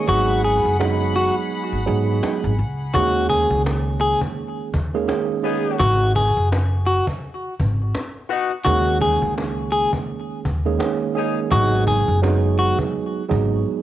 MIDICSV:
0, 0, Header, 1, 7, 480
1, 0, Start_track
1, 0, Key_signature, 5, "minor"
1, 0, Tempo, 714286
1, 54, Time_signature, 4, 2, 24, 8
1, 9287, End_track
2, 0, Start_track
2, 0, Title_t, "String section"
2, 0, Program_c, 0, 48
2, 0, Note_on_c, 0, 68, 78
2, 54, Note_on_c, 0, 78, 69
2, 54, Note_on_c, 0, 83, 91
2, 1947, Note_off_c, 0, 68, 0
2, 1955, Note_off_c, 0, 78, 0
2, 1955, Note_off_c, 0, 83, 0
2, 9287, End_track
3, 0, Start_track
3, 0, Title_t, "Clean electric guitar"
3, 0, Program_c, 1, 27
3, 58, Note_on_c, 1, 66, 108
3, 273, Note_off_c, 1, 66, 0
3, 299, Note_on_c, 1, 68, 73
3, 513, Note_off_c, 1, 68, 0
3, 778, Note_on_c, 1, 66, 72
3, 903, Note_off_c, 1, 66, 0
3, 1980, Note_on_c, 1, 66, 107
3, 2193, Note_off_c, 1, 66, 0
3, 2215, Note_on_c, 1, 68, 86
3, 2431, Note_off_c, 1, 68, 0
3, 2693, Note_on_c, 1, 68, 89
3, 2820, Note_off_c, 1, 68, 0
3, 3894, Note_on_c, 1, 66, 101
3, 4110, Note_off_c, 1, 66, 0
3, 4138, Note_on_c, 1, 68, 71
3, 4352, Note_off_c, 1, 68, 0
3, 4613, Note_on_c, 1, 66, 78
3, 4740, Note_off_c, 1, 66, 0
3, 5810, Note_on_c, 1, 66, 104
3, 6028, Note_off_c, 1, 66, 0
3, 6058, Note_on_c, 1, 68, 79
3, 6272, Note_off_c, 1, 68, 0
3, 6532, Note_on_c, 1, 68, 81
3, 6660, Note_off_c, 1, 68, 0
3, 7739, Note_on_c, 1, 66, 109
3, 7953, Note_off_c, 1, 66, 0
3, 7981, Note_on_c, 1, 68, 75
3, 8194, Note_off_c, 1, 68, 0
3, 8458, Note_on_c, 1, 66, 75
3, 8583, Note_off_c, 1, 66, 0
3, 9287, End_track
4, 0, Start_track
4, 0, Title_t, "Saxophone section"
4, 0, Program_c, 2, 65
4, 3654, Note_on_c, 2, 59, 112
4, 3654, Note_on_c, 2, 63, 98
4, 3654, Note_on_c, 2, 68, 114
4, 3978, Note_off_c, 2, 59, 0
4, 3978, Note_off_c, 2, 63, 0
4, 3978, Note_off_c, 2, 68, 0
4, 5569, Note_on_c, 2, 59, 96
4, 5569, Note_on_c, 2, 63, 103
4, 5569, Note_on_c, 2, 66, 125
4, 5724, Note_off_c, 2, 59, 0
4, 5724, Note_off_c, 2, 63, 0
4, 5724, Note_off_c, 2, 66, 0
4, 7500, Note_on_c, 2, 61, 101
4, 7500, Note_on_c, 2, 63, 103
4, 7500, Note_on_c, 2, 68, 102
4, 7651, Note_off_c, 2, 61, 0
4, 7651, Note_off_c, 2, 63, 0
4, 7651, Note_off_c, 2, 68, 0
4, 9287, End_track
5, 0, Start_track
5, 0, Title_t, "Tine electric piano"
5, 0, Program_c, 3, 4
5, 46, Note_on_c, 3, 54, 89
5, 48, Note_on_c, 3, 56, 76
5, 50, Note_on_c, 3, 59, 80
5, 51, Note_on_c, 3, 63, 87
5, 52, Note_on_c, 3, 68, 112
5, 499, Note_off_c, 3, 54, 0
5, 500, Note_off_c, 3, 56, 0
5, 500, Note_off_c, 3, 59, 0
5, 501, Note_off_c, 3, 63, 0
5, 502, Note_off_c, 3, 68, 0
5, 534, Note_on_c, 3, 54, 95
5, 534, Note_on_c, 3, 56, 91
5, 536, Note_on_c, 3, 59, 83
5, 538, Note_on_c, 3, 63, 83
5, 539, Note_on_c, 3, 68, 105
5, 1206, Note_off_c, 3, 54, 0
5, 1207, Note_off_c, 3, 56, 0
5, 1208, Note_off_c, 3, 59, 0
5, 1208, Note_off_c, 3, 63, 0
5, 1209, Note_off_c, 3, 68, 0
5, 1249, Note_on_c, 3, 54, 91
5, 1251, Note_on_c, 3, 56, 89
5, 1252, Note_on_c, 3, 59, 86
5, 1254, Note_on_c, 3, 63, 90
5, 1255, Note_on_c, 3, 68, 105
5, 1700, Note_off_c, 3, 54, 0
5, 1701, Note_off_c, 3, 56, 0
5, 1702, Note_off_c, 3, 59, 0
5, 1702, Note_off_c, 3, 63, 0
5, 1703, Note_off_c, 3, 68, 0
5, 1978, Note_on_c, 3, 51, 97
5, 1980, Note_on_c, 3, 56, 84
5, 1981, Note_on_c, 3, 58, 88
5, 1983, Note_on_c, 3, 61, 90
5, 1984, Note_on_c, 3, 68, 105
5, 3193, Note_off_c, 3, 51, 0
5, 3194, Note_off_c, 3, 56, 0
5, 3195, Note_off_c, 3, 58, 0
5, 3196, Note_off_c, 3, 61, 0
5, 3196, Note_off_c, 3, 68, 0
5, 3321, Note_on_c, 3, 51, 96
5, 3322, Note_on_c, 3, 56, 89
5, 3324, Note_on_c, 3, 58, 93
5, 3325, Note_on_c, 3, 61, 87
5, 3327, Note_on_c, 3, 68, 101
5, 3401, Note_off_c, 3, 51, 0
5, 3403, Note_off_c, 3, 56, 0
5, 3403, Note_off_c, 3, 58, 0
5, 3406, Note_off_c, 3, 61, 0
5, 3407, Note_off_c, 3, 68, 0
5, 3409, Note_on_c, 3, 51, 83
5, 3411, Note_on_c, 3, 56, 67
5, 3411, Note_on_c, 3, 58, 76
5, 3414, Note_on_c, 3, 61, 73
5, 3415, Note_on_c, 3, 68, 88
5, 3636, Note_off_c, 3, 51, 0
5, 3637, Note_off_c, 3, 56, 0
5, 3637, Note_off_c, 3, 58, 0
5, 3638, Note_off_c, 3, 61, 0
5, 3639, Note_off_c, 3, 68, 0
5, 3648, Note_on_c, 3, 51, 74
5, 3649, Note_on_c, 3, 56, 67
5, 3651, Note_on_c, 3, 58, 75
5, 3652, Note_on_c, 3, 61, 73
5, 3654, Note_on_c, 3, 68, 87
5, 3875, Note_off_c, 3, 51, 0
5, 3876, Note_off_c, 3, 56, 0
5, 3877, Note_off_c, 3, 58, 0
5, 3877, Note_off_c, 3, 61, 0
5, 3878, Note_off_c, 3, 68, 0
5, 5817, Note_on_c, 3, 51, 102
5, 5819, Note_on_c, 3, 56, 86
5, 5820, Note_on_c, 3, 58, 88
5, 5821, Note_on_c, 3, 61, 86
5, 5823, Note_on_c, 3, 68, 103
5, 7033, Note_off_c, 3, 51, 0
5, 7033, Note_off_c, 3, 56, 0
5, 7034, Note_off_c, 3, 58, 0
5, 7035, Note_off_c, 3, 61, 0
5, 7036, Note_off_c, 3, 68, 0
5, 7160, Note_on_c, 3, 51, 98
5, 7162, Note_on_c, 3, 56, 92
5, 7163, Note_on_c, 3, 58, 91
5, 7165, Note_on_c, 3, 61, 85
5, 7166, Note_on_c, 3, 68, 103
5, 7241, Note_off_c, 3, 51, 0
5, 7242, Note_off_c, 3, 56, 0
5, 7244, Note_off_c, 3, 58, 0
5, 7245, Note_off_c, 3, 61, 0
5, 7247, Note_off_c, 3, 68, 0
5, 7249, Note_on_c, 3, 51, 85
5, 7250, Note_on_c, 3, 56, 68
5, 7252, Note_on_c, 3, 58, 79
5, 7253, Note_on_c, 3, 61, 74
5, 7255, Note_on_c, 3, 68, 90
5, 7476, Note_off_c, 3, 51, 0
5, 7477, Note_off_c, 3, 56, 0
5, 7478, Note_off_c, 3, 58, 0
5, 7478, Note_off_c, 3, 61, 0
5, 7479, Note_off_c, 3, 68, 0
5, 7487, Note_on_c, 3, 51, 75
5, 7488, Note_on_c, 3, 56, 67
5, 7490, Note_on_c, 3, 58, 77
5, 7492, Note_on_c, 3, 61, 72
5, 7493, Note_on_c, 3, 68, 90
5, 7715, Note_off_c, 3, 51, 0
5, 7715, Note_off_c, 3, 56, 0
5, 7717, Note_off_c, 3, 58, 0
5, 7717, Note_off_c, 3, 61, 0
5, 7718, Note_off_c, 3, 68, 0
5, 7728, Note_on_c, 3, 54, 93
5, 7730, Note_on_c, 3, 56, 82
5, 7731, Note_on_c, 3, 59, 86
5, 7732, Note_on_c, 3, 63, 85
5, 7733, Note_on_c, 3, 68, 114
5, 8179, Note_off_c, 3, 54, 0
5, 8180, Note_off_c, 3, 56, 0
5, 8181, Note_off_c, 3, 59, 0
5, 8182, Note_off_c, 3, 63, 0
5, 8182, Note_off_c, 3, 68, 0
5, 8212, Note_on_c, 3, 54, 101
5, 8214, Note_on_c, 3, 56, 90
5, 8215, Note_on_c, 3, 59, 89
5, 8217, Note_on_c, 3, 63, 90
5, 8218, Note_on_c, 3, 68, 110
5, 8886, Note_off_c, 3, 54, 0
5, 8886, Note_off_c, 3, 56, 0
5, 8887, Note_off_c, 3, 59, 0
5, 8888, Note_off_c, 3, 63, 0
5, 8889, Note_off_c, 3, 68, 0
5, 8928, Note_on_c, 3, 54, 97
5, 8929, Note_on_c, 3, 56, 91
5, 8931, Note_on_c, 3, 59, 89
5, 8932, Note_on_c, 3, 63, 90
5, 8934, Note_on_c, 3, 68, 109
5, 9287, Note_off_c, 3, 54, 0
5, 9287, Note_off_c, 3, 56, 0
5, 9287, Note_off_c, 3, 59, 0
5, 9287, Note_off_c, 3, 63, 0
5, 9287, Note_off_c, 3, 68, 0
5, 9287, End_track
6, 0, Start_track
6, 0, Title_t, "Upright bass"
6, 0, Program_c, 4, 32
6, 56, Note_on_c, 4, 32, 108
6, 387, Note_off_c, 4, 32, 0
6, 437, Note_on_c, 4, 30, 89
6, 855, Note_off_c, 4, 30, 0
6, 1158, Note_on_c, 4, 32, 86
6, 1243, Note_off_c, 4, 32, 0
6, 1257, Note_on_c, 4, 44, 108
6, 1465, Note_off_c, 4, 44, 0
6, 1638, Note_on_c, 4, 32, 92
6, 1738, Note_on_c, 4, 37, 91
6, 1748, Note_off_c, 4, 32, 0
6, 1946, Note_off_c, 4, 37, 0
6, 1977, Note_on_c, 4, 39, 117
6, 2308, Note_off_c, 4, 39, 0
6, 2356, Note_on_c, 4, 37, 92
6, 2774, Note_off_c, 4, 37, 0
6, 3185, Note_on_c, 4, 39, 91
6, 3390, Note_off_c, 4, 39, 0
6, 3898, Note_on_c, 4, 32, 124
6, 4228, Note_off_c, 4, 32, 0
6, 4278, Note_on_c, 4, 30, 91
6, 4695, Note_off_c, 4, 30, 0
6, 5106, Note_on_c, 4, 32, 97
6, 5310, Note_off_c, 4, 32, 0
6, 5818, Note_on_c, 4, 39, 121
6, 6148, Note_off_c, 4, 39, 0
6, 6197, Note_on_c, 4, 37, 93
6, 6615, Note_off_c, 4, 37, 0
6, 7025, Note_on_c, 4, 39, 95
6, 7230, Note_off_c, 4, 39, 0
6, 7738, Note_on_c, 4, 32, 119
6, 8068, Note_off_c, 4, 32, 0
6, 8118, Note_on_c, 4, 30, 91
6, 8536, Note_off_c, 4, 30, 0
6, 8945, Note_on_c, 4, 32, 96
6, 9150, Note_off_c, 4, 32, 0
6, 9287, End_track
7, 0, Start_track
7, 0, Title_t, "Cajon"
7, 197, Note_on_c, 9, 38, 19
7, 264, Note_off_c, 9, 38, 0
7, 290, Note_on_c, 9, 38, 43
7, 357, Note_off_c, 9, 38, 0
7, 434, Note_on_c, 9, 38, 29
7, 501, Note_off_c, 9, 38, 0
7, 541, Note_on_c, 9, 38, 98
7, 544, Note_off_c, 9, 38, 0
7, 544, Note_on_c, 9, 38, 118
7, 611, Note_off_c, 9, 38, 0
7, 771, Note_on_c, 9, 38, 41
7, 838, Note_off_c, 9, 38, 0
7, 915, Note_on_c, 9, 38, 31
7, 982, Note_off_c, 9, 38, 0
7, 1011, Note_on_c, 9, 38, 48
7, 1078, Note_off_c, 9, 38, 0
7, 1148, Note_on_c, 9, 38, 19
7, 1215, Note_off_c, 9, 38, 0
7, 1248, Note_on_c, 9, 38, 44
7, 1315, Note_off_c, 9, 38, 0
7, 1390, Note_on_c, 9, 38, 29
7, 1457, Note_off_c, 9, 38, 0
7, 1498, Note_on_c, 9, 38, 88
7, 1501, Note_off_c, 9, 38, 0
7, 1501, Note_on_c, 9, 38, 111
7, 1568, Note_off_c, 9, 38, 0
7, 1631, Note_on_c, 9, 38, 20
7, 1698, Note_off_c, 9, 38, 0
7, 1730, Note_on_c, 9, 38, 43
7, 1797, Note_off_c, 9, 38, 0
7, 1870, Note_on_c, 9, 38, 29
7, 1938, Note_off_c, 9, 38, 0
7, 1976, Note_on_c, 9, 36, 124
7, 2043, Note_off_c, 9, 36, 0
7, 2218, Note_on_c, 9, 36, 95
7, 2285, Note_off_c, 9, 36, 0
7, 2355, Note_on_c, 9, 36, 95
7, 2422, Note_off_c, 9, 36, 0
7, 2461, Note_on_c, 9, 38, 102
7, 2463, Note_off_c, 9, 38, 0
7, 2463, Note_on_c, 9, 38, 126
7, 2531, Note_off_c, 9, 38, 0
7, 2593, Note_on_c, 9, 38, 20
7, 2660, Note_off_c, 9, 38, 0
7, 2691, Note_on_c, 9, 38, 42
7, 2758, Note_off_c, 9, 38, 0
7, 2832, Note_on_c, 9, 36, 101
7, 2899, Note_off_c, 9, 36, 0
7, 2931, Note_on_c, 9, 38, 50
7, 2998, Note_off_c, 9, 38, 0
7, 3184, Note_on_c, 9, 36, 100
7, 3251, Note_off_c, 9, 36, 0
7, 3311, Note_on_c, 9, 38, 30
7, 3378, Note_off_c, 9, 38, 0
7, 3419, Note_on_c, 9, 38, 91
7, 3421, Note_off_c, 9, 38, 0
7, 3421, Note_on_c, 9, 38, 113
7, 3488, Note_off_c, 9, 38, 0
7, 3552, Note_on_c, 9, 38, 20
7, 3619, Note_off_c, 9, 38, 0
7, 3651, Note_on_c, 9, 38, 46
7, 3718, Note_off_c, 9, 38, 0
7, 3791, Note_on_c, 9, 38, 29
7, 3858, Note_off_c, 9, 38, 0
7, 3897, Note_on_c, 9, 36, 123
7, 3964, Note_off_c, 9, 36, 0
7, 4138, Note_on_c, 9, 36, 97
7, 4205, Note_off_c, 9, 36, 0
7, 4275, Note_on_c, 9, 38, 30
7, 4342, Note_off_c, 9, 38, 0
7, 4383, Note_on_c, 9, 38, 104
7, 4385, Note_off_c, 9, 38, 0
7, 4385, Note_on_c, 9, 38, 127
7, 4452, Note_off_c, 9, 38, 0
7, 4514, Note_on_c, 9, 38, 21
7, 4581, Note_off_c, 9, 38, 0
7, 4611, Note_on_c, 9, 38, 42
7, 4679, Note_off_c, 9, 38, 0
7, 4752, Note_on_c, 9, 36, 102
7, 4820, Note_off_c, 9, 36, 0
7, 4852, Note_on_c, 9, 38, 48
7, 4919, Note_off_c, 9, 38, 0
7, 5104, Note_on_c, 9, 36, 98
7, 5171, Note_off_c, 9, 36, 0
7, 5231, Note_on_c, 9, 38, 29
7, 5298, Note_off_c, 9, 38, 0
7, 5339, Note_on_c, 9, 38, 92
7, 5341, Note_off_c, 9, 38, 0
7, 5341, Note_on_c, 9, 38, 116
7, 5409, Note_off_c, 9, 38, 0
7, 5471, Note_on_c, 9, 38, 20
7, 5538, Note_off_c, 9, 38, 0
7, 5571, Note_on_c, 9, 38, 44
7, 5638, Note_off_c, 9, 38, 0
7, 5711, Note_on_c, 9, 38, 28
7, 5778, Note_off_c, 9, 38, 0
7, 5817, Note_on_c, 9, 36, 127
7, 5884, Note_off_c, 9, 36, 0
7, 6058, Note_on_c, 9, 36, 95
7, 6125, Note_off_c, 9, 36, 0
7, 6195, Note_on_c, 9, 36, 95
7, 6262, Note_off_c, 9, 36, 0
7, 6302, Note_on_c, 9, 38, 102
7, 6304, Note_off_c, 9, 38, 0
7, 6304, Note_on_c, 9, 38, 127
7, 6371, Note_off_c, 9, 38, 0
7, 6433, Note_on_c, 9, 38, 22
7, 6501, Note_off_c, 9, 38, 0
7, 6531, Note_on_c, 9, 38, 44
7, 6598, Note_off_c, 9, 38, 0
7, 6672, Note_on_c, 9, 36, 102
7, 6740, Note_off_c, 9, 36, 0
7, 6771, Note_on_c, 9, 38, 51
7, 6838, Note_off_c, 9, 38, 0
7, 7024, Note_on_c, 9, 36, 101
7, 7091, Note_off_c, 9, 36, 0
7, 7150, Note_on_c, 9, 38, 29
7, 7218, Note_off_c, 9, 38, 0
7, 7258, Note_on_c, 9, 38, 95
7, 7261, Note_off_c, 9, 38, 0
7, 7261, Note_on_c, 9, 38, 115
7, 7328, Note_off_c, 9, 38, 0
7, 7391, Note_on_c, 9, 38, 21
7, 7458, Note_off_c, 9, 38, 0
7, 7491, Note_on_c, 9, 38, 45
7, 7558, Note_off_c, 9, 38, 0
7, 7631, Note_on_c, 9, 38, 28
7, 7698, Note_off_c, 9, 38, 0
7, 7736, Note_on_c, 9, 36, 121
7, 7804, Note_off_c, 9, 36, 0
7, 7878, Note_on_c, 9, 38, 20
7, 7945, Note_off_c, 9, 38, 0
7, 7978, Note_on_c, 9, 36, 98
7, 8045, Note_off_c, 9, 36, 0
7, 8114, Note_on_c, 9, 38, 31
7, 8181, Note_off_c, 9, 38, 0
7, 8222, Note_on_c, 9, 38, 100
7, 8224, Note_off_c, 9, 38, 0
7, 8224, Note_on_c, 9, 38, 127
7, 8291, Note_off_c, 9, 38, 0
7, 8592, Note_on_c, 9, 36, 101
7, 8659, Note_off_c, 9, 36, 0
7, 8691, Note_on_c, 9, 38, 49
7, 8758, Note_off_c, 9, 38, 0
7, 8828, Note_on_c, 9, 38, 20
7, 8895, Note_off_c, 9, 38, 0
7, 8944, Note_on_c, 9, 36, 102
7, 9011, Note_off_c, 9, 36, 0
7, 9070, Note_on_c, 9, 38, 29
7, 9137, Note_off_c, 9, 38, 0
7, 9178, Note_on_c, 9, 38, 49
7, 9245, Note_off_c, 9, 38, 0
7, 9287, End_track
0, 0, End_of_file